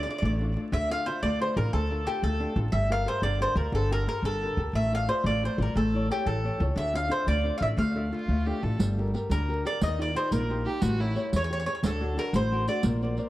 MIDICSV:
0, 0, Header, 1, 6, 480
1, 0, Start_track
1, 0, Key_signature, -1, "minor"
1, 0, Tempo, 333333
1, 1048, Time_signature, 6, 3, 24, 8
1, 5365, Tempo, 337458
1, 12570, Key_signature, -2, "minor"
1, 18969, End_track
2, 0, Start_track
2, 0, Title_t, "Mandolin"
2, 0, Program_c, 0, 25
2, 44, Note_on_c, 0, 74, 58
2, 134, Note_off_c, 0, 74, 0
2, 151, Note_on_c, 0, 74, 54
2, 246, Note_off_c, 0, 74, 0
2, 265, Note_on_c, 0, 74, 62
2, 348, Note_off_c, 0, 74, 0
2, 365, Note_on_c, 0, 74, 51
2, 470, Note_off_c, 0, 74, 0
2, 1056, Note_on_c, 0, 76, 81
2, 1295, Note_off_c, 0, 76, 0
2, 1316, Note_on_c, 0, 77, 95
2, 1527, Note_off_c, 0, 77, 0
2, 1528, Note_on_c, 0, 72, 73
2, 1747, Note_off_c, 0, 72, 0
2, 1766, Note_on_c, 0, 74, 85
2, 2009, Note_off_c, 0, 74, 0
2, 2039, Note_on_c, 0, 72, 71
2, 2248, Note_off_c, 0, 72, 0
2, 2262, Note_on_c, 0, 70, 75
2, 2473, Note_off_c, 0, 70, 0
2, 2495, Note_on_c, 0, 69, 80
2, 2978, Note_on_c, 0, 67, 72
2, 2993, Note_off_c, 0, 69, 0
2, 3189, Note_off_c, 0, 67, 0
2, 3220, Note_on_c, 0, 69, 80
2, 3719, Note_off_c, 0, 69, 0
2, 3917, Note_on_c, 0, 76, 72
2, 4159, Note_off_c, 0, 76, 0
2, 4204, Note_on_c, 0, 77, 90
2, 4428, Note_off_c, 0, 77, 0
2, 4437, Note_on_c, 0, 72, 82
2, 4638, Note_off_c, 0, 72, 0
2, 4655, Note_on_c, 0, 74, 80
2, 4916, Note_off_c, 0, 74, 0
2, 4925, Note_on_c, 0, 72, 86
2, 5132, Note_off_c, 0, 72, 0
2, 5138, Note_on_c, 0, 70, 57
2, 5351, Note_off_c, 0, 70, 0
2, 5398, Note_on_c, 0, 69, 70
2, 5624, Note_off_c, 0, 69, 0
2, 5648, Note_on_c, 0, 70, 86
2, 5850, Note_off_c, 0, 70, 0
2, 5877, Note_on_c, 0, 70, 81
2, 6102, Note_off_c, 0, 70, 0
2, 6114, Note_on_c, 0, 69, 79
2, 6610, Note_off_c, 0, 69, 0
2, 6828, Note_on_c, 0, 76, 69
2, 7060, Note_off_c, 0, 76, 0
2, 7103, Note_on_c, 0, 77, 83
2, 7300, Note_off_c, 0, 77, 0
2, 7304, Note_on_c, 0, 72, 71
2, 7514, Note_off_c, 0, 72, 0
2, 7554, Note_on_c, 0, 74, 84
2, 7783, Note_off_c, 0, 74, 0
2, 7822, Note_on_c, 0, 72, 67
2, 8020, Note_off_c, 0, 72, 0
2, 8065, Note_on_c, 0, 70, 55
2, 8257, Note_off_c, 0, 70, 0
2, 8269, Note_on_c, 0, 69, 66
2, 8715, Note_off_c, 0, 69, 0
2, 8764, Note_on_c, 0, 67, 73
2, 8965, Note_off_c, 0, 67, 0
2, 8977, Note_on_c, 0, 69, 68
2, 9479, Note_off_c, 0, 69, 0
2, 9704, Note_on_c, 0, 76, 73
2, 9935, Note_off_c, 0, 76, 0
2, 9958, Note_on_c, 0, 77, 86
2, 10186, Note_off_c, 0, 77, 0
2, 10187, Note_on_c, 0, 72, 80
2, 10414, Note_off_c, 0, 72, 0
2, 10420, Note_on_c, 0, 74, 89
2, 10813, Note_off_c, 0, 74, 0
2, 10843, Note_on_c, 0, 77, 68
2, 10895, Note_off_c, 0, 77, 0
2, 10910, Note_on_c, 0, 76, 62
2, 10981, Note_off_c, 0, 76, 0
2, 11138, Note_on_c, 0, 77, 70
2, 12290, Note_off_c, 0, 77, 0
2, 13314, Note_on_c, 0, 70, 72
2, 13762, Note_off_c, 0, 70, 0
2, 13814, Note_on_c, 0, 74, 77
2, 14015, Note_off_c, 0, 74, 0
2, 14050, Note_on_c, 0, 75, 87
2, 14276, Note_off_c, 0, 75, 0
2, 14313, Note_on_c, 0, 74, 78
2, 14509, Note_off_c, 0, 74, 0
2, 14523, Note_on_c, 0, 72, 90
2, 14727, Note_off_c, 0, 72, 0
2, 14745, Note_on_c, 0, 70, 68
2, 15247, Note_off_c, 0, 70, 0
2, 16228, Note_on_c, 0, 73, 74
2, 16317, Note_off_c, 0, 73, 0
2, 16340, Note_on_c, 0, 73, 62
2, 16431, Note_off_c, 0, 73, 0
2, 16461, Note_on_c, 0, 73, 72
2, 16539, Note_off_c, 0, 73, 0
2, 16559, Note_on_c, 0, 73, 63
2, 16638, Note_off_c, 0, 73, 0
2, 16654, Note_on_c, 0, 73, 68
2, 16737, Note_off_c, 0, 73, 0
2, 16775, Note_on_c, 0, 73, 48
2, 16848, Note_off_c, 0, 73, 0
2, 16934, Note_on_c, 0, 69, 68
2, 17368, Note_off_c, 0, 69, 0
2, 17401, Note_on_c, 0, 70, 81
2, 17626, Note_off_c, 0, 70, 0
2, 17643, Note_on_c, 0, 72, 85
2, 18082, Note_off_c, 0, 72, 0
2, 18110, Note_on_c, 0, 74, 66
2, 18319, Note_off_c, 0, 74, 0
2, 18969, End_track
3, 0, Start_track
3, 0, Title_t, "Nylon-string guitar"
3, 0, Program_c, 1, 24
3, 90, Note_on_c, 1, 62, 46
3, 98, Note_on_c, 1, 65, 36
3, 100, Note_on_c, 1, 69, 46
3, 326, Note_on_c, 1, 57, 55
3, 486, Note_off_c, 1, 62, 0
3, 488, Note_off_c, 1, 65, 0
3, 491, Note_off_c, 1, 69, 0
3, 587, Note_on_c, 1, 62, 46
3, 594, Note_on_c, 1, 65, 36
3, 601, Note_on_c, 1, 69, 43
3, 789, Note_off_c, 1, 62, 0
3, 791, Note_off_c, 1, 65, 0
3, 795, Note_off_c, 1, 69, 0
3, 802, Note_on_c, 1, 62, 39
3, 803, Note_off_c, 1, 57, 0
3, 812, Note_on_c, 1, 65, 36
3, 821, Note_on_c, 1, 69, 40
3, 995, Note_off_c, 1, 62, 0
3, 997, Note_off_c, 1, 65, 0
3, 999, Note_off_c, 1, 69, 0
3, 1037, Note_on_c, 1, 50, 55
3, 1298, Note_on_c, 1, 62, 40
3, 1306, Note_on_c, 1, 65, 35
3, 1315, Note_on_c, 1, 69, 44
3, 1519, Note_off_c, 1, 50, 0
3, 1525, Note_off_c, 1, 62, 0
3, 1529, Note_off_c, 1, 65, 0
3, 1540, Note_on_c, 1, 62, 47
3, 1542, Note_off_c, 1, 69, 0
3, 1551, Note_on_c, 1, 65, 39
3, 1560, Note_on_c, 1, 69, 50
3, 1772, Note_on_c, 1, 57, 61
3, 1933, Note_off_c, 1, 62, 0
3, 1935, Note_off_c, 1, 65, 0
3, 1943, Note_off_c, 1, 69, 0
3, 2020, Note_on_c, 1, 62, 41
3, 2028, Note_on_c, 1, 65, 41
3, 2029, Note_on_c, 1, 69, 48
3, 2236, Note_off_c, 1, 62, 0
3, 2242, Note_off_c, 1, 65, 0
3, 2245, Note_off_c, 1, 57, 0
3, 2248, Note_off_c, 1, 69, 0
3, 2253, Note_on_c, 1, 62, 39
3, 2261, Note_on_c, 1, 65, 39
3, 2265, Note_on_c, 1, 69, 37
3, 2492, Note_on_c, 1, 57, 60
3, 2646, Note_off_c, 1, 62, 0
3, 2649, Note_off_c, 1, 65, 0
3, 2653, Note_off_c, 1, 69, 0
3, 2745, Note_on_c, 1, 62, 43
3, 2753, Note_on_c, 1, 65, 35
3, 2760, Note_on_c, 1, 69, 43
3, 2956, Note_off_c, 1, 62, 0
3, 2959, Note_off_c, 1, 65, 0
3, 2963, Note_off_c, 1, 57, 0
3, 2971, Note_off_c, 1, 69, 0
3, 2971, Note_on_c, 1, 62, 46
3, 2979, Note_on_c, 1, 65, 38
3, 2989, Note_on_c, 1, 69, 53
3, 3212, Note_on_c, 1, 57, 51
3, 3364, Note_off_c, 1, 62, 0
3, 3366, Note_off_c, 1, 65, 0
3, 3373, Note_off_c, 1, 69, 0
3, 3455, Note_on_c, 1, 62, 42
3, 3461, Note_on_c, 1, 65, 37
3, 3468, Note_on_c, 1, 69, 46
3, 3675, Note_off_c, 1, 65, 0
3, 3676, Note_off_c, 1, 62, 0
3, 3681, Note_off_c, 1, 57, 0
3, 3687, Note_off_c, 1, 69, 0
3, 3693, Note_on_c, 1, 62, 43
3, 3695, Note_on_c, 1, 65, 36
3, 3705, Note_on_c, 1, 69, 47
3, 3875, Note_off_c, 1, 62, 0
3, 3875, Note_off_c, 1, 65, 0
3, 3882, Note_off_c, 1, 69, 0
3, 3926, Note_on_c, 1, 55, 60
3, 4177, Note_on_c, 1, 67, 47
3, 4185, Note_on_c, 1, 69, 40
3, 4191, Note_on_c, 1, 70, 51
3, 4386, Note_off_c, 1, 69, 0
3, 4387, Note_off_c, 1, 67, 0
3, 4393, Note_off_c, 1, 70, 0
3, 4397, Note_off_c, 1, 55, 0
3, 4403, Note_on_c, 1, 67, 46
3, 4406, Note_on_c, 1, 69, 43
3, 4410, Note_on_c, 1, 70, 52
3, 4642, Note_on_c, 1, 50, 62
3, 4799, Note_off_c, 1, 69, 0
3, 4800, Note_off_c, 1, 67, 0
3, 4803, Note_off_c, 1, 70, 0
3, 4895, Note_on_c, 1, 67, 43
3, 4904, Note_on_c, 1, 69, 39
3, 4910, Note_on_c, 1, 70, 49
3, 5105, Note_off_c, 1, 67, 0
3, 5107, Note_off_c, 1, 69, 0
3, 5113, Note_off_c, 1, 70, 0
3, 5119, Note_off_c, 1, 50, 0
3, 5121, Note_on_c, 1, 67, 40
3, 5126, Note_on_c, 1, 69, 38
3, 5131, Note_on_c, 1, 70, 41
3, 5360, Note_on_c, 1, 50, 66
3, 5520, Note_off_c, 1, 67, 0
3, 5521, Note_off_c, 1, 69, 0
3, 5525, Note_off_c, 1, 70, 0
3, 5626, Note_on_c, 1, 67, 42
3, 5628, Note_on_c, 1, 69, 40
3, 5637, Note_on_c, 1, 70, 46
3, 5837, Note_off_c, 1, 50, 0
3, 5842, Note_off_c, 1, 67, 0
3, 5845, Note_off_c, 1, 69, 0
3, 5854, Note_off_c, 1, 70, 0
3, 5858, Note_on_c, 1, 67, 45
3, 5864, Note_on_c, 1, 69, 35
3, 5871, Note_on_c, 1, 70, 47
3, 6099, Note_on_c, 1, 50, 55
3, 6250, Note_off_c, 1, 67, 0
3, 6251, Note_off_c, 1, 69, 0
3, 6256, Note_off_c, 1, 70, 0
3, 6365, Note_on_c, 1, 67, 35
3, 6370, Note_on_c, 1, 69, 34
3, 6374, Note_on_c, 1, 70, 44
3, 6568, Note_off_c, 1, 50, 0
3, 6572, Note_off_c, 1, 67, 0
3, 6578, Note_off_c, 1, 69, 0
3, 6586, Note_off_c, 1, 70, 0
3, 6589, Note_on_c, 1, 67, 39
3, 6595, Note_on_c, 1, 69, 35
3, 6603, Note_on_c, 1, 70, 38
3, 6768, Note_off_c, 1, 67, 0
3, 6771, Note_off_c, 1, 69, 0
3, 6776, Note_off_c, 1, 70, 0
3, 6817, Note_on_c, 1, 57, 52
3, 7070, Note_on_c, 1, 65, 37
3, 7083, Note_on_c, 1, 69, 36
3, 7085, Note_on_c, 1, 74, 46
3, 7282, Note_off_c, 1, 65, 0
3, 7288, Note_off_c, 1, 57, 0
3, 7288, Note_off_c, 1, 69, 0
3, 7296, Note_off_c, 1, 74, 0
3, 7299, Note_on_c, 1, 65, 48
3, 7305, Note_on_c, 1, 69, 39
3, 7313, Note_on_c, 1, 74, 44
3, 7528, Note_on_c, 1, 57, 58
3, 7690, Note_off_c, 1, 65, 0
3, 7694, Note_off_c, 1, 69, 0
3, 7699, Note_off_c, 1, 74, 0
3, 7793, Note_on_c, 1, 65, 36
3, 7804, Note_on_c, 1, 74, 49
3, 7805, Note_on_c, 1, 69, 41
3, 8003, Note_off_c, 1, 57, 0
3, 8006, Note_off_c, 1, 65, 0
3, 8010, Note_off_c, 1, 69, 0
3, 8015, Note_off_c, 1, 74, 0
3, 8023, Note_on_c, 1, 65, 36
3, 8027, Note_on_c, 1, 69, 39
3, 8032, Note_on_c, 1, 74, 40
3, 8205, Note_off_c, 1, 65, 0
3, 8207, Note_off_c, 1, 69, 0
3, 8210, Note_off_c, 1, 74, 0
3, 8259, Note_on_c, 1, 57, 58
3, 8517, Note_on_c, 1, 64, 39
3, 8530, Note_on_c, 1, 69, 35
3, 8536, Note_on_c, 1, 73, 44
3, 8729, Note_off_c, 1, 57, 0
3, 8729, Note_off_c, 1, 64, 0
3, 8731, Note_off_c, 1, 69, 0
3, 8735, Note_off_c, 1, 73, 0
3, 8746, Note_on_c, 1, 64, 48
3, 8752, Note_on_c, 1, 69, 45
3, 8752, Note_on_c, 1, 73, 49
3, 8979, Note_on_c, 1, 52, 57
3, 9133, Note_off_c, 1, 64, 0
3, 9134, Note_off_c, 1, 69, 0
3, 9137, Note_off_c, 1, 73, 0
3, 9226, Note_on_c, 1, 64, 42
3, 9232, Note_on_c, 1, 69, 41
3, 9238, Note_on_c, 1, 73, 47
3, 9445, Note_off_c, 1, 64, 0
3, 9446, Note_off_c, 1, 52, 0
3, 9452, Note_off_c, 1, 69, 0
3, 9456, Note_off_c, 1, 73, 0
3, 9462, Note_on_c, 1, 64, 44
3, 9467, Note_on_c, 1, 69, 33
3, 9475, Note_on_c, 1, 73, 44
3, 9642, Note_off_c, 1, 64, 0
3, 9646, Note_off_c, 1, 69, 0
3, 9649, Note_off_c, 1, 73, 0
3, 9679, Note_on_c, 1, 50, 70
3, 9926, Note_on_c, 1, 62, 37
3, 9932, Note_on_c, 1, 65, 40
3, 9939, Note_on_c, 1, 69, 44
3, 10132, Note_off_c, 1, 62, 0
3, 10137, Note_off_c, 1, 65, 0
3, 10147, Note_off_c, 1, 69, 0
3, 10148, Note_on_c, 1, 62, 42
3, 10155, Note_off_c, 1, 50, 0
3, 10159, Note_on_c, 1, 65, 45
3, 10164, Note_on_c, 1, 69, 49
3, 10393, Note_on_c, 1, 57, 54
3, 10549, Note_off_c, 1, 62, 0
3, 10552, Note_off_c, 1, 65, 0
3, 10558, Note_off_c, 1, 69, 0
3, 10645, Note_on_c, 1, 62, 46
3, 10650, Note_on_c, 1, 65, 41
3, 10661, Note_on_c, 1, 69, 47
3, 10865, Note_off_c, 1, 62, 0
3, 10870, Note_off_c, 1, 65, 0
3, 10872, Note_off_c, 1, 57, 0
3, 10875, Note_off_c, 1, 69, 0
3, 10881, Note_on_c, 1, 62, 40
3, 10889, Note_on_c, 1, 65, 36
3, 10892, Note_on_c, 1, 69, 38
3, 11112, Note_on_c, 1, 57, 62
3, 11278, Note_off_c, 1, 62, 0
3, 11281, Note_off_c, 1, 65, 0
3, 11284, Note_off_c, 1, 69, 0
3, 11370, Note_on_c, 1, 62, 39
3, 11377, Note_on_c, 1, 65, 35
3, 11384, Note_on_c, 1, 69, 51
3, 11593, Note_off_c, 1, 57, 0
3, 11593, Note_off_c, 1, 62, 0
3, 11597, Note_off_c, 1, 65, 0
3, 11607, Note_off_c, 1, 69, 0
3, 11610, Note_on_c, 1, 62, 37
3, 11616, Note_on_c, 1, 65, 43
3, 11624, Note_on_c, 1, 69, 46
3, 11855, Note_on_c, 1, 57, 56
3, 12006, Note_off_c, 1, 62, 0
3, 12008, Note_off_c, 1, 65, 0
3, 12014, Note_off_c, 1, 69, 0
3, 12108, Note_on_c, 1, 62, 41
3, 12111, Note_on_c, 1, 65, 35
3, 12115, Note_on_c, 1, 69, 43
3, 12325, Note_off_c, 1, 62, 0
3, 12329, Note_off_c, 1, 57, 0
3, 12335, Note_off_c, 1, 65, 0
3, 12337, Note_off_c, 1, 69, 0
3, 12342, Note_on_c, 1, 62, 41
3, 12350, Note_on_c, 1, 65, 30
3, 12357, Note_on_c, 1, 69, 35
3, 12526, Note_off_c, 1, 62, 0
3, 12531, Note_off_c, 1, 65, 0
3, 12533, Note_off_c, 1, 69, 0
3, 12575, Note_on_c, 1, 55, 68
3, 12842, Note_on_c, 1, 67, 44
3, 12848, Note_on_c, 1, 69, 40
3, 12857, Note_on_c, 1, 70, 53
3, 13051, Note_off_c, 1, 55, 0
3, 13054, Note_off_c, 1, 67, 0
3, 13060, Note_off_c, 1, 69, 0
3, 13070, Note_off_c, 1, 70, 0
3, 13071, Note_on_c, 1, 67, 50
3, 13077, Note_on_c, 1, 69, 43
3, 13088, Note_on_c, 1, 70, 48
3, 13309, Note_on_c, 1, 50, 61
3, 13462, Note_off_c, 1, 67, 0
3, 13465, Note_off_c, 1, 69, 0
3, 13471, Note_off_c, 1, 70, 0
3, 13557, Note_on_c, 1, 67, 46
3, 13569, Note_on_c, 1, 69, 39
3, 13576, Note_on_c, 1, 70, 47
3, 13779, Note_off_c, 1, 50, 0
3, 13779, Note_off_c, 1, 67, 0
3, 13781, Note_off_c, 1, 69, 0
3, 13793, Note_off_c, 1, 70, 0
3, 13794, Note_on_c, 1, 67, 41
3, 13801, Note_on_c, 1, 69, 36
3, 13810, Note_on_c, 1, 70, 45
3, 13976, Note_off_c, 1, 67, 0
3, 13977, Note_off_c, 1, 69, 0
3, 13984, Note_off_c, 1, 70, 0
3, 14021, Note_on_c, 1, 51, 70
3, 14269, Note_on_c, 1, 63, 48
3, 14275, Note_on_c, 1, 65, 40
3, 14283, Note_on_c, 1, 67, 47
3, 14485, Note_off_c, 1, 63, 0
3, 14490, Note_off_c, 1, 65, 0
3, 14493, Note_off_c, 1, 51, 0
3, 14495, Note_off_c, 1, 67, 0
3, 14500, Note_on_c, 1, 63, 50
3, 14510, Note_on_c, 1, 65, 38
3, 14512, Note_on_c, 1, 67, 53
3, 14729, Note_on_c, 1, 58, 56
3, 14893, Note_off_c, 1, 63, 0
3, 14896, Note_off_c, 1, 65, 0
3, 14899, Note_off_c, 1, 67, 0
3, 14999, Note_on_c, 1, 63, 42
3, 15008, Note_on_c, 1, 65, 42
3, 15013, Note_on_c, 1, 67, 55
3, 15204, Note_off_c, 1, 58, 0
3, 15206, Note_off_c, 1, 63, 0
3, 15209, Note_off_c, 1, 65, 0
3, 15210, Note_off_c, 1, 67, 0
3, 15219, Note_on_c, 1, 63, 45
3, 15229, Note_on_c, 1, 65, 41
3, 15237, Note_on_c, 1, 67, 47
3, 15406, Note_off_c, 1, 63, 0
3, 15408, Note_off_c, 1, 65, 0
3, 15408, Note_off_c, 1, 67, 0
3, 15454, Note_on_c, 1, 57, 77
3, 15704, Note_on_c, 1, 67, 49
3, 15712, Note_on_c, 1, 69, 45
3, 15715, Note_on_c, 1, 73, 54
3, 15920, Note_off_c, 1, 67, 0
3, 15923, Note_off_c, 1, 69, 0
3, 15927, Note_off_c, 1, 57, 0
3, 15927, Note_off_c, 1, 73, 0
3, 15936, Note_on_c, 1, 67, 47
3, 15943, Note_on_c, 1, 69, 43
3, 15944, Note_on_c, 1, 73, 52
3, 16187, Note_on_c, 1, 52, 65
3, 16330, Note_off_c, 1, 67, 0
3, 16331, Note_off_c, 1, 69, 0
3, 16334, Note_off_c, 1, 73, 0
3, 16426, Note_on_c, 1, 67, 51
3, 16434, Note_on_c, 1, 69, 44
3, 16435, Note_on_c, 1, 73, 49
3, 16649, Note_off_c, 1, 67, 0
3, 16653, Note_off_c, 1, 52, 0
3, 16654, Note_off_c, 1, 69, 0
3, 16655, Note_off_c, 1, 73, 0
3, 16664, Note_on_c, 1, 67, 44
3, 16672, Note_on_c, 1, 73, 41
3, 16675, Note_on_c, 1, 69, 39
3, 16847, Note_off_c, 1, 67, 0
3, 16850, Note_off_c, 1, 69, 0
3, 16850, Note_off_c, 1, 73, 0
3, 16903, Note_on_c, 1, 50, 69
3, 17147, Note_on_c, 1, 62, 49
3, 17152, Note_on_c, 1, 66, 41
3, 17162, Note_on_c, 1, 69, 52
3, 17355, Note_off_c, 1, 62, 0
3, 17356, Note_off_c, 1, 66, 0
3, 17363, Note_off_c, 1, 69, 0
3, 17371, Note_off_c, 1, 50, 0
3, 17372, Note_on_c, 1, 62, 49
3, 17375, Note_on_c, 1, 66, 37
3, 17380, Note_on_c, 1, 69, 52
3, 17611, Note_on_c, 1, 57, 61
3, 17766, Note_off_c, 1, 62, 0
3, 17767, Note_off_c, 1, 66, 0
3, 17771, Note_off_c, 1, 69, 0
3, 17871, Note_on_c, 1, 62, 40
3, 17877, Note_on_c, 1, 66, 45
3, 17885, Note_on_c, 1, 69, 42
3, 18083, Note_off_c, 1, 62, 0
3, 18083, Note_off_c, 1, 66, 0
3, 18085, Note_off_c, 1, 57, 0
3, 18090, Note_off_c, 1, 69, 0
3, 18098, Note_on_c, 1, 62, 39
3, 18105, Note_on_c, 1, 66, 38
3, 18107, Note_on_c, 1, 69, 40
3, 18283, Note_off_c, 1, 62, 0
3, 18283, Note_off_c, 1, 66, 0
3, 18288, Note_off_c, 1, 69, 0
3, 18329, Note_on_c, 1, 58, 59
3, 18588, Note_on_c, 1, 70, 43
3, 18598, Note_on_c, 1, 72, 34
3, 18598, Note_on_c, 1, 74, 49
3, 18799, Note_off_c, 1, 70, 0
3, 18801, Note_off_c, 1, 72, 0
3, 18804, Note_off_c, 1, 58, 0
3, 18808, Note_off_c, 1, 74, 0
3, 18815, Note_on_c, 1, 70, 45
3, 18821, Note_on_c, 1, 72, 44
3, 18825, Note_on_c, 1, 74, 53
3, 18969, Note_off_c, 1, 70, 0
3, 18969, Note_off_c, 1, 72, 0
3, 18969, Note_off_c, 1, 74, 0
3, 18969, End_track
4, 0, Start_track
4, 0, Title_t, "Violin"
4, 0, Program_c, 2, 40
4, 11619, Note_on_c, 2, 65, 66
4, 12107, Note_on_c, 2, 67, 74
4, 12128, Note_off_c, 2, 65, 0
4, 12342, Note_on_c, 2, 69, 72
4, 12363, Note_off_c, 2, 67, 0
4, 12571, Note_off_c, 2, 69, 0
4, 15228, Note_on_c, 2, 67, 93
4, 15450, Note_on_c, 2, 66, 94
4, 15471, Note_off_c, 2, 67, 0
4, 15718, Note_on_c, 2, 64, 85
4, 15739, Note_off_c, 2, 66, 0
4, 16059, Note_off_c, 2, 64, 0
4, 18969, End_track
5, 0, Start_track
5, 0, Title_t, "Upright bass"
5, 0, Program_c, 3, 32
5, 319, Note_on_c, 3, 33, 96
5, 790, Note_off_c, 3, 33, 0
5, 1039, Note_on_c, 3, 38, 98
5, 1511, Note_off_c, 3, 38, 0
5, 1765, Note_on_c, 3, 38, 74
5, 2085, Note_off_c, 3, 38, 0
5, 2255, Note_on_c, 3, 33, 91
5, 2405, Note_off_c, 3, 33, 0
5, 2495, Note_on_c, 3, 38, 90
5, 2958, Note_off_c, 3, 38, 0
5, 3205, Note_on_c, 3, 38, 75
5, 3521, Note_off_c, 3, 38, 0
5, 3683, Note_on_c, 3, 33, 98
5, 3834, Note_off_c, 3, 33, 0
5, 3920, Note_on_c, 3, 31, 94
5, 4387, Note_off_c, 3, 31, 0
5, 4636, Note_on_c, 3, 31, 86
5, 4957, Note_off_c, 3, 31, 0
5, 5121, Note_on_c, 3, 38, 101
5, 5275, Note_off_c, 3, 38, 0
5, 5361, Note_on_c, 3, 31, 98
5, 5830, Note_off_c, 3, 31, 0
5, 6074, Note_on_c, 3, 31, 75
5, 6396, Note_off_c, 3, 31, 0
5, 6566, Note_on_c, 3, 38, 81
5, 6719, Note_off_c, 3, 38, 0
5, 6796, Note_on_c, 3, 33, 82
5, 7268, Note_off_c, 3, 33, 0
5, 7519, Note_on_c, 3, 33, 81
5, 7840, Note_off_c, 3, 33, 0
5, 8005, Note_on_c, 3, 33, 88
5, 8159, Note_off_c, 3, 33, 0
5, 8250, Note_on_c, 3, 33, 90
5, 8717, Note_off_c, 3, 33, 0
5, 8969, Note_on_c, 3, 33, 76
5, 9285, Note_off_c, 3, 33, 0
5, 9454, Note_on_c, 3, 37, 93
5, 9603, Note_off_c, 3, 37, 0
5, 9675, Note_on_c, 3, 38, 90
5, 10144, Note_off_c, 3, 38, 0
5, 10409, Note_on_c, 3, 38, 85
5, 10724, Note_off_c, 3, 38, 0
5, 10888, Note_on_c, 3, 33, 81
5, 11039, Note_off_c, 3, 33, 0
5, 11122, Note_on_c, 3, 38, 95
5, 11591, Note_off_c, 3, 38, 0
5, 11846, Note_on_c, 3, 38, 72
5, 12166, Note_off_c, 3, 38, 0
5, 12340, Note_on_c, 3, 33, 81
5, 12490, Note_off_c, 3, 33, 0
5, 12575, Note_on_c, 3, 31, 93
5, 13044, Note_off_c, 3, 31, 0
5, 13290, Note_on_c, 3, 38, 77
5, 13760, Note_off_c, 3, 38, 0
5, 14031, Note_on_c, 3, 39, 93
5, 14493, Note_off_c, 3, 39, 0
5, 14739, Note_on_c, 3, 34, 87
5, 15203, Note_off_c, 3, 34, 0
5, 15458, Note_on_c, 3, 33, 85
5, 15923, Note_off_c, 3, 33, 0
5, 16178, Note_on_c, 3, 40, 88
5, 16642, Note_off_c, 3, 40, 0
5, 16888, Note_on_c, 3, 38, 78
5, 17356, Note_off_c, 3, 38, 0
5, 17607, Note_on_c, 3, 33, 86
5, 18075, Note_off_c, 3, 33, 0
5, 18329, Note_on_c, 3, 34, 84
5, 18796, Note_off_c, 3, 34, 0
5, 18969, End_track
6, 0, Start_track
6, 0, Title_t, "Riq"
6, 12583, Note_on_c, 9, 54, 54
6, 12725, Note_off_c, 9, 54, 0
6, 13312, Note_on_c, 9, 54, 49
6, 13454, Note_off_c, 9, 54, 0
6, 14026, Note_on_c, 9, 54, 61
6, 14168, Note_off_c, 9, 54, 0
6, 14747, Note_on_c, 9, 54, 46
6, 14889, Note_off_c, 9, 54, 0
6, 15453, Note_on_c, 9, 54, 59
6, 15595, Note_off_c, 9, 54, 0
6, 16182, Note_on_c, 9, 54, 49
6, 16324, Note_off_c, 9, 54, 0
6, 16900, Note_on_c, 9, 54, 65
6, 17042, Note_off_c, 9, 54, 0
6, 17618, Note_on_c, 9, 54, 43
6, 17760, Note_off_c, 9, 54, 0
6, 18097, Note_on_c, 9, 54, 21
6, 18240, Note_off_c, 9, 54, 0
6, 18317, Note_on_c, 9, 54, 63
6, 18459, Note_off_c, 9, 54, 0
6, 18969, End_track
0, 0, End_of_file